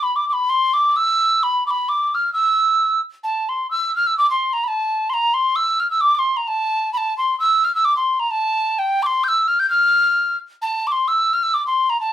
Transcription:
0.03 B5
0.16 D6
0.29 D6
0.33 B5
0.50 C6
0.74 D6
0.96 E6
1.43 B5
1.67 B5 D6
1.89 D6
2.15 F6
2.33 E6
3.24 A5
3.49 C6
3.71 E6
3.96 F6
4.07 E6
4.18 D6
4.31 C6
4.53 A#5
4.64 B5
4.68 A5
5.10 C6
5.14 A#5
5.34 C6
5.56 E6
5.80 F6
5.91 E6
6.01 D6
6.15 D6
6.19 C6
6.37 A#5
6.48 A5
6.93 B5
6.97 A5
7.18 C6
7.40 E6
7.64 F6
7.75 E6
7.85 D6
7.97 C6
8.20 A#5
8.31 A5
8.79 G5
9.03 C6 D6
9.24 G6
9.28 E6
9.48 F6
9.59 G6
9.70 F6
10.62 A5
10.87 D6
10.92 C6
11.08 E6
11.33 F6
11.43 E6
11.54 D6
11.67 C6
11.90 A#5
12.00 A5

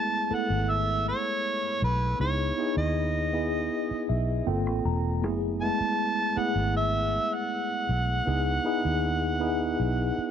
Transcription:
Already playing: G#3 A3 B3 E4 G#4 A5
0.30 A3 B3 E4 A4, muted fingered electric bass stroke
0.34 F#5
0.50 G#1
0.63 F#5
0.70 E5
1.08 C#5
1.82 B1 B4
2.19 C#2 B3 D#4 E4 G#4 C#5
2.58 B3 D#4 E4 G#4
2.77 D#2 D#5
3.33 B3 E4 G#4 D#5
3.91 muted fingered electric bass stroke
4.09 B1 E5
4.46 G1 A#3 C4 F4 A4 G5
4.66 A1
4.85 E1 A#5
5.22 F#1 A3 B3 E4 G#4
5.61 G#3 A3 B3 E4 A5
5.80 muted fingered electric bass stroke
6.36 A3 B3 E4 G#4 F#5, muted fingered electric bass stroke
6.55 G#1
6.76 E5
7.34 F#5
7.89 B1
8.26 C#2 B3 D#4 E4 G#4
8.64 B3 D#4 E4 G#4
8.85 D#2
9.40 B3 D#4 E4 G#4
9.80 B1
10.18 muted fingered electric bass stroke

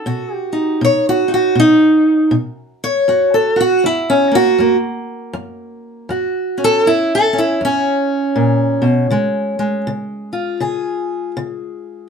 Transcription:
Already playing: A4
0.06 B2 F#4
0.34 G4
0.53 D#4
0.81 B2 C#5
1.09 F#4
1.28 D#4
1.34 F#4
1.55 B2
1.60 D#4
2.31 B2
2.84 C#5
3.08 F#2 F#4
3.34 A4
3.56 F#4
3.61 F#4
3.84 F#2 E4
4.10 C#4
4.32 A#3 F#4
4.59 F#2 A#3
5.33 F#2
6.09 F#2 F#4
6.58 C#4
6.64 A4
6.86 F#2 E4
7.15 A4
7.33 C#4
7.38 E4
7.61 F#2 C#4
8.36 A#2
8.82 B2
9.11 C#3 G#3
9.59 G#3
9.87 C#3
10.33 F4
10.60 C#3 G#4
11.37 C#3

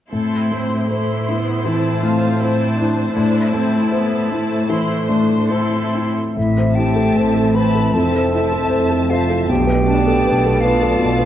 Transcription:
0.11 A2 C4 E4 A4 C6
0.52 A3 C5
0.90 A3 E4 C5 C6
1.28 B3 E4
1.66 E3 C4 E4 A5
2.03 A3 F4
2.42 E4 C5 A5
2.78 D4 E4
3.16 A2 D4 E4 A5
3.54 A3 C4
3.92 B3 C5
4.30 A3 E4
4.69 E3 E4 C5 C6
5.09 A3 D4
5.48 C4 E4 A4 C5 C6
5.94 E4
6.35 A1 A2 C4 E4 E5
6.58 C5
6.74 C4 E4 G4 E5 G5 A5
6.96 A4
7.16 A1 A2 A4 C5 A5
7.35 A4
7.55 C4 B4 C5 E5 A5 B5
7.75 A4
7.93 F1 F2 C4 A4 E5 A5
7.97 A5
8.16 C5
8.33 C4 E4 E5 A5
8.52 A4
8.70 F1 F2 C5
8.91 A4
9.10 C4 F4 C5 E5 F5 A5
9.30 A4
9.48 B1 B2 A3 D4 G4 G5
9.67 B4
9.87 B3 D4 D5 A5
10.07 A4
10.25 B1 B2 B4
10.46 A4
10.60 B3 F4 B4 D5 F5 A5
10.83 A4
10.99 B1 B2
11.19 B4

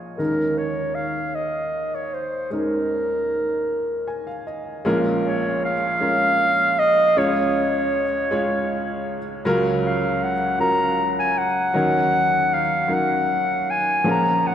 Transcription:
Already playing: A#1 A#2 G#3 C#4 F4 G#4
0.17 D#2 D#3 G#3 C#4 D#4 A#4
0.58 C#5
0.95 F5
1.35 D#5
1.95 C#5
2.14 C5
2.50 D#2 D#3 G#3 C#4 D#4 A#4
4.08 G#5
4.27 F5
4.47 D#5
4.85 A#1 A#2 G#3 C#4 F4 A#4
5.27 C#5
5.65 F5
6.00 G#3 C#4 F4 A#4
6.79 D#5
7.16 C#2 C#3 G#3 C#4 F4 C#5
8.31 G#3 C#4 F4 C#5
9.45 C#2 C#3 F#3 C#4 F4 A#4
9.86 F5
10.23 F#5
10.59 F#3 C#4 F4 A#4 A#5
11.19 G#5
11.38 F#5
11.74 D#2 D#3 F#3 C#4 D#4 A#4
12.54 F5
12.88 F#3 C#4 D#4 A#4
12.94 F#5
13.70 G#5
14.04 A#1 A#2 F3 C#4 G#4 A#4
14.11 A#5
14.47 F#5

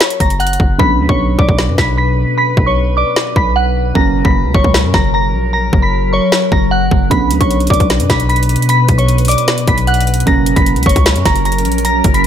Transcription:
Already playing: C#3 F#3 A#3 C#4 C#5 C#6
0.00 snare, closed hi-hat
0.10 closed hi-hat
0.20 F#1 A#5 A#6, kick, closed hi-hat
0.30 closed hi-hat
0.40 F#5 F#6, closed hi-hat
0.47 closed hi-hat
0.53 closed hi-hat
0.60 F#1, kick
0.78 B1 B2 C#3 D3 F#3 B3 B4 B5 B6, kick
0.99 D2
1.09 B1 C#5 C#6, kick
1.39 B1 D5 D6, kick
1.49 B1, kick
1.59 snare
1.68 F#2
1.78 B1 B5 B6, kick, snare
1.98 B5 B6
2.38 B5 B6
2.57 B1, kick
2.66 C#5 C#6
2.97 D5 D6
3.16 snare
3.36 B1 B5 B6, kick
3.56 F#5 F#6
3.94 F#1 C#3 F#3 A#3 C#4 A#4 A#5 A#6, kick
4.25 F#1 B5 B6, kick
4.45 C#2
4.54 F#1 C#5 C#6, kick
4.64 C#2, kick
4.74 snare
4.84 F#2
4.94 F#1 A#5 A#6, kick, snare
5.14 A#5 A#6
5.33 A#1
5.53 A#5 A#6
5.73 F#1, kick
5.82 B5 B6
6.13 C#5 C#6
6.32 snare
6.52 F#1 A#5 A#6, kick
6.71 F#5 F#6
6.91 F#1, kick
7.10 B1 B2 C#3 D3 F#3 B3 B4 B5 B6, kick, closed hi-hat
7.31 D2, closed hi-hat
7.40 B1 C#5 C#6, kick, closed hi-hat
7.51 closed hi-hat
7.60 closed hi-hat
7.67 B1 D5 D6, kick, closed hi-hat
7.74 closed hi-hat
7.80 B1, kick, closed hi-hat
7.90 snare, closed hi-hat
8.00 F#2, closed hi-hat
8.10 B1 B5 B6, kick, snare, closed hi-hat
8.20 closed hi-hat
8.29 B5 B6, closed hi-hat
8.36 closed hi-hat
8.43 closed hi-hat
8.49 closed hi-hat
8.56 closed hi-hat
8.62 closed hi-hat
8.69 B5 B6, closed hi-hat
8.88 B1, kick, closed hi-hat
8.98 C#5 C#6, closed hi-hat
9.08 closed hi-hat
9.18 closed hi-hat
9.25 D6, closed hi-hat, open hi-hat
9.29 D5, closed hi-hat
9.38 closed hi-hat
9.48 snare, closed hi-hat
9.58 closed hi-hat
9.68 B1 B5 B6, kick, closed hi-hat
9.78 closed hi-hat
9.87 F#5 F#6, closed hi-hat
9.94 closed hi-hat
10.01 closed hi-hat
10.07 closed hi-hat
10.14 closed hi-hat
10.20 closed hi-hat
10.26 F#1 C#3 F#3 A#3 C#4 A#4 A#5 A#6, kick, closed hi-hat
10.46 closed hi-hat
10.56 F#1 B5 B6, kick, closed hi-hat
10.66 closed hi-hat
10.76 C#2, closed hi-hat
10.83 F#1 C#6, kick, closed hi-hat
10.87 C#5, closed hi-hat
10.96 C#2, kick, closed hi-hat
11.06 snare, closed hi-hat
11.16 F#2, closed hi-hat
11.25 F#1 A#5 A#6, kick, snare, closed hi-hat
11.36 closed hi-hat
11.45 A#5 A#6, closed hi-hat
11.52 closed hi-hat
11.58 closed hi-hat
11.65 A#1, closed hi-hat
11.72 closed hi-hat
11.78 closed hi-hat
11.85 A#5 A#6, closed hi-hat
12.04 F#1, kick, closed hi-hat
12.14 B5 B6, closed hi-hat

